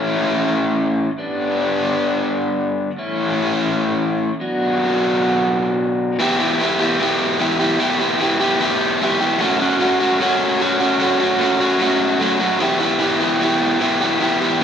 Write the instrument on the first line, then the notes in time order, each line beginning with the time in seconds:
overdriven electric guitar
Already playing: A2 E3 A3 C#4 E4
1.17 G2 D3 G3 B3 D4
2.97 A2 E3 A3 C#4 E4
4.39 B2 F#3 B3 D4 F#4
6.19 E3 B3 E4 G4
6.39 B3 E4 G4
6.60 E3 B3 E4 G4
6.79 B3 E4 G4
6.99 E3 B3 E4 G4
7.39 E3 B3 E4 G4
7.59 B3 E4 G4
7.80 E3 B3 E4 G4
7.99 B3 E4 G4
8.20 E3 B3 E4 G4
8.40 B3 E4 G4
8.60 E3 B3 E4 G4
9.01 E3 B3 E4 G4
9.21 B3 E4 G4
9.39 F#3 A3 C#4 F#4
9.60 A3 C#4 F#4
9.80 F#3 A3 C#4 F#4
10.00 A3 C#4 F#4
10.20 F#3 A3 C#4 F#4
10.60 F#3 A3 C#4 F#4
10.80 A3 C#4 F#4
11.00 F#3 A3 C#4 F#4
11.20 A3 C#4 F#4
11.38 F#3 A3 C#4 F#4
11.60 A3 C#4 F#4
11.79 F#3 A3 C#4 F#4
12.20 F#3 A3 C#4 F#4
12.40 A3 C#4 F#4
12.60 E3 B3 E4 G4
12.79 B3 E4 G4
13.00 E3 B3 E4 G4
13.20 B3 E4 G4
13.40 E3 B3 E4 G4
13.80 E3 B3 E4 G4
14.01 B3 E4 G4
14.21 E3 B3 E4 G4
14.41 B3 E4 G4
14.60 E3